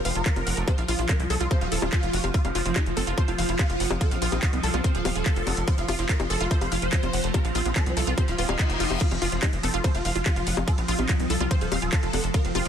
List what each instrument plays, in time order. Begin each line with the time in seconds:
Already playing: ambient pad F3
0.05 analog synth bass F1, digital synth lead C4, synth arpeggio sound F5, open hi-hat
0.15 analog synth bass F1, synth arpeggio sound F4, digital synth lead A#4, closed hi-hat
0.26 synth arpeggio sound F4, kick, clap, closed hi-hat
0.36 analog synth bass F1, synth arpeggio sound F4, closed hi-hat, high bongo
0.47 analog synth bass F1, synth arpeggio sound F#5, open hi-hat
0.57 analog synth bass F1, wobble bass A3, closed hi-hat
0.68 synth arpeggio sound F4, digital synth lead C5, kick, closed hi-hat, high bongo
0.78 analog synth bass A#1, digital synth lead F4, synth arpeggio sound F5, closed hi-hat
0.88 analog synth bass A#1, digital synth lead F4, synth arpeggio sound F4, open hi-hat
0.99 analog synth bass A#1, digital synth lead F4, synth arpeggio sound F4, closed hi-hat
1.09 digital synth lead A#4, kick, clap, closed hi-hat, high bongo
1.20 analog synth bass C2, digital synth lead F4, closed hi-hat
1.30 analog synth bass C2, digital synth lead A4, synth arpeggio sound A4, open hi-hat
1.41 analog synth bass C2, wobble bass F3, digital synth lead F4, synth arpeggio sound F4, closed hi-hat
1.51 digital synth lead F4, synth arpeggio sound C5, kick, closed hi-hat, high bongo
1.61 analog synth bass D#1, digital synth lead F#4, synth arpeggio sound F5, closed hi-hat
1.72 analog synth bass D#1, digital synth lead F4, synth arpeggio sound A4, open hi-hat
1.82 analog synth bass D#1, digital synth lead F4, synth arpeggio sound F4, closed hi-hat, high bongo
1.93 synth arpeggio sound C5, kick, clap, closed hi-hat
2.03 analog synth bass F1, closed hi-hat
2.13 analog synth bass F1, synth arpeggio sound F#4, open hi-hat
2.24 analog synth bass F1, synth arpeggio sound F5, closed hi-hat, high bongo
2.34 digital synth lead F4, synth arpeggio sound F4, kick, closed hi-hat
2.45 analog synth bass F1, digital synth lead F3, synth arpeggio sound F5, closed hi-hat, high bongo
2.55 analog synth bass F1, digital synth lead F3, synth arpeggio sound F4, open hi-hat
2.65 analog synth bass F1, digital synth lead F3, wobble bass C4, synth arpeggio sound F4, closed hi-hat
2.76 digital synth lead D#4, kick, clap, closed hi-hat, high bongo
2.86 analog synth bass F1, digital synth lead F3, closed hi-hat
2.97 analog synth bass F1, digital synth lead C4, synth arpeggio sound A4, open hi-hat
3.07 analog synth bass F1, digital synth lead F3, synth arpeggio sound F4, closed hi-hat
3.18 digital synth lead F3, wobble bass A3, synth arpeggio sound C5, kick, closed hi-hat, high bongo
3.28 analog synth bass F1, wobble bass A3, digital synth lead F4, synth arpeggio sound F5, closed hi-hat
3.38 analog synth bass F1, digital synth lead F3, synth arpeggio sound F5, open hi-hat
3.49 analog synth bass F1, digital synth lead F4, synth arpeggio sound F4, closed hi-hat
3.59 synth arpeggio sound F4, kick, clap, closed hi-hat, high bongo
3.70 analog synth bass F1, synth arpeggio sound F4, closed hi-hat
3.80 analog synth bass F1, synth arpeggio sound F#5, open hi-hat
3.91 analog synth bass F1, closed hi-hat, high bongo
4.01 synth arpeggio sound F4, digital synth lead A4, kick, closed hi-hat
4.11 analog synth bass A#1, digital synth lead C4, synth arpeggio sound F5, closed hi-hat
4.22 analog synth bass A#1, digital synth lead C4, synth arpeggio sound F4, open hi-hat
4.32 analog synth bass A#1, digital synth lead C4, wobble bass D#4, synth arpeggio sound F4, closed hi-hat, high bongo
4.43 digital synth lead F#4, kick, clap, closed hi-hat
4.53 analog synth bass C2, digital synth lead C4, closed hi-hat
4.63 analog synth bass C2, digital synth lead F4, synth arpeggio sound A4, open hi-hat
4.74 analog synth bass C2, digital synth lead C4, synth arpeggio sound F4, closed hi-hat, high bongo
4.84 digital synth lead C4, synth arpeggio sound C5, kick, closed hi-hat
4.95 analog synth bass D#1, digital synth lead A4, synth arpeggio sound F5, closed hi-hat
5.05 analog synth bass D#1, digital synth lead C4, synth arpeggio sound F5, open hi-hat, high bongo
5.16 analog synth bass D#1, synth arpeggio sound F4, digital synth lead A4, closed hi-hat
5.26 synth arpeggio sound F4, kick, clap, closed hi-hat
5.36 analog synth bass F1, synth arpeggio sound F4, closed hi-hat
5.47 analog synth bass F1, synth arpeggio sound F#5, open hi-hat, high bongo
5.57 analog synth bass F1, closed hi-hat
5.68 synth arpeggio sound F4, digital synth lead C5, kick, closed hi-hat
5.78 analog synth bass F1, digital synth lead F4, synth arpeggio sound F5, closed hi-hat
5.88 analog synth bass F1, synth arpeggio sound F4, digital synth lead F4, open hi-hat, high bongo
5.99 analog synth bass F1, wobble bass C4, synth arpeggio sound F4, digital synth lead F4, closed hi-hat
6.09 digital synth lead A#4, kick, clap, closed hi-hat
6.20 analog synth bass F1, digital synth lead F4, closed hi-hat, high bongo
6.30 analog synth bass F1, synth arpeggio sound A4, digital synth lead A4, open hi-hat
6.40 analog synth bass F1, wobble bass A3, synth arpeggio sound F4, digital synth lead F4, closed hi-hat
6.51 wobble bass A3, digital synth lead F4, synth arpeggio sound C5, kick, closed hi-hat
6.61 analog synth bass F1, digital synth lead C5, synth arpeggio sound F5, closed hi-hat, high bongo
6.72 analog synth bass F1, digital synth lead F4, synth arpeggio sound F5, open hi-hat
6.82 analog synth bass F1, synth arpeggio sound F4, digital synth lead C5, closed hi-hat
6.93 synth arpeggio sound F4, kick, clap, closed hi-hat
7.03 analog synth bass F1, synth arpeggio sound F4, closed hi-hat, high bongo
7.13 analog synth bass F1, synth arpeggio sound F#5, open hi-hat
7.24 analog synth bass F1, wobble bass A3, closed hi-hat
7.34 synth arpeggio sound F4, digital synth lead A#4, kick, closed hi-hat, high bongo
7.45 analog synth bass A#1, digital synth lead C4, synth arpeggio sound F5, closed hi-hat
7.55 analog synth bass A#1, digital synth lead C4, synth arpeggio sound F4, open hi-hat
7.65 analog synth bass A#1, digital synth lead C4, synth arpeggio sound F4, closed hi-hat
7.76 digital synth lead A4, kick, clap, closed hi-hat, high bongo
7.86 analog synth bass C2, digital synth lead C4, closed hi-hat
7.97 analog synth bass C2, digital synth lead F4, synth arpeggio sound A4, open hi-hat
8.07 analog synth bass C2, wobble bass F3, digital synth lead C4, synth arpeggio sound F4, closed hi-hat
8.18 digital synth lead C4, synth arpeggio sound C5, kick, closed hi-hat, high bongo, reverse cymbal
8.28 analog synth bass D#1, digital synth lead F4, synth arpeggio sound F5, closed hi-hat
8.38 analog synth bass D#1, digital synth lead C4, synth arpeggio sound F4, open hi-hat
8.49 analog synth bass D#1, digital synth lead D#4, synth arpeggio sound F5, closed hi-hat, high bongo
8.59 synth arpeggio sound F4, kick, clap, closed hi-hat
8.70 analog synth bass F1, closed hi-hat
8.80 analog synth bass F1, synth arpeggio sound F4, open hi-hat
8.91 analog synth bass F1, closed hi-hat, high bongo
9.01 ambient pad F3, synth arpeggio sound F4, digital synth lead F4, kick, closed hi-hat, crash, ride
9.11 analog synth bass F1, digital synth lead F3, synth arpeggio sound F5, closed hi-hat, high bongo
9.22 analog synth bass F1, digital synth lead F3, synth arpeggio sound F4, open hi-hat
9.32 analog synth bass F1, digital synth lead F3, wobble bass C4, synth arpeggio sound F4, closed hi-hat
9.43 digital synth lead D#4, kick, clap, closed hi-hat, ride, high bongo
9.53 analog synth bass F1, digital synth lead F3, closed hi-hat
9.63 analog synth bass F1, digital synth lead C4, synth arpeggio sound A4, open hi-hat
9.74 analog synth bass F1, digital synth lead F3, synth arpeggio sound F4, closed hi-hat
9.84 digital synth lead F3, wobble bass A3, synth arpeggio sound C5, kick, closed hi-hat, ride, high bongo
9.95 analog synth bass F1, wobble bass A3, digital synth lead F4, synth arpeggio sound F5, closed hi-hat
10.05 analog synth bass F1, digital synth lead F3, synth arpeggio sound F5, open hi-hat
10.15 analog synth bass F1, synth arpeggio sound F4, digital synth lead F4, closed hi-hat
10.26 synth arpeggio sound F4, kick, clap, closed hi-hat, ride, high bongo
10.36 analog synth bass F1, synth arpeggio sound F4, closed hi-hat
10.47 analog synth bass F1, synth arpeggio sound F#5, open hi-hat
10.57 analog synth bass F1, closed hi-hat, high bongo
10.68 synth arpeggio sound F4, digital synth lead A4, kick, closed hi-hat, ride
10.78 analog synth bass A#1, digital synth lead C4, synth arpeggio sound F5, closed hi-hat
10.88 analog synth bass A#1, digital synth lead C4, synth arpeggio sound F4, open hi-hat
10.99 analog synth bass A#1, digital synth lead C4, wobble bass D#4, synth arpeggio sound F4, closed hi-hat, high bongo
11.09 digital synth lead F#4, kick, clap, closed hi-hat, ride
11.20 analog synth bass C2, digital synth lead C4, closed hi-hat
11.30 analog synth bass C2, digital synth lead F4, synth arpeggio sound A4, open hi-hat
11.40 analog synth bass C2, digital synth lead C4, synth arpeggio sound F4, closed hi-hat, high bongo
11.51 digital synth lead C4, synth arpeggio sound C5, kick, closed hi-hat, ride
11.61 analog synth bass D#1, digital synth lead A4, synth arpeggio sound F5, closed hi-hat
11.72 analog synth bass D#1, digital synth lead C4, synth arpeggio sound F5, open hi-hat, high bongo
11.82 analog synth bass D#1, synth arpeggio sound F4, digital synth lead A4, closed hi-hat
11.93 synth arpeggio sound F4, kick, clap, closed hi-hat, ride
12.03 analog synth bass F1, synth arpeggio sound F4, closed hi-hat
12.13 analog synth bass F1, synth arpeggio sound F#5, open hi-hat, high bongo
12.24 analog synth bass F1, closed hi-hat
12.34 synth arpeggio sound F4, digital synth lead A#4, kick, closed hi-hat, ride
12.45 analog synth bass F1, digital synth lead C4, synth arpeggio sound F5, closed hi-hat
12.55 analog synth bass F1, digital synth lead C4, synth arpeggio sound F4, open hi-hat, high bongo